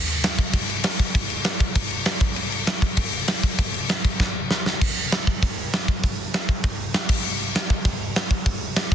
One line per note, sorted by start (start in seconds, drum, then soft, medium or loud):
0.08 crash medium
0.24 snare loud
0.24 crash medium
0.39 kick medium
0.39 crash medium
0.53 kick loud
0.53 crash medium
0.70 crash medium
0.84 snare loud
0.84 crash loud
0.99 kick medium
0.99 crash medium
1.15 kick loud
1.15 crash medium
1.30 crash medium
1.44 snare loud
1.44 crash medium
1.60 kick medium
1.60 crash medium
1.75 kick loud
1.75 crash medium
1.90 crash medium
2.05 snare loud
2.05 crash medium
2.20 kick loud
2.20 crash medium
2.36 crash medium
2.52 crash medium
2.67 snare loud
2.67 crash medium
2.82 kick medium
2.82 crash medium
2.97 kick loud
2.97 crash loud
3.13 crash medium
3.28 snare loud
3.28 crash medium
3.43 kick medium
3.43 crash medium
3.59 kick loud
3.59 crash medium
3.74 crash medium
3.89 snare loud
3.89 crash medium
4.05 kick medium
4.05 crash medium
4.20 kick loud
4.20 snare medium
4.51 snare loud
4.66 snare medium
4.81 kick loud
4.81 crash loud
5.12 snare loud
5.12 open hi-hat medium
5.27 kick medium
5.43 kick loud
5.43 open hi-hat medium
5.73 snare loud
5.73 open hi-hat medium
5.88 kick medium
6.04 kick medium
6.04 open hi-hat medium
6.34 snare loud
6.34 open hi-hat medium
6.49 kick medium
6.64 kick loud
6.64 open hi-hat medium
6.94 snare loud
7.09 kick loud
7.09 crash loud
7.55 snare loud
7.55 open hi-hat medium
7.70 kick medium
7.85 kick loud
7.85 open hi-hat medium
8.16 snare loud
8.16 open hi-hat medium
8.31 kick medium
8.46 kick loud
8.46 open hi-hat medium
8.76 snare loud
8.76 open hi-hat medium
8.92 kick medium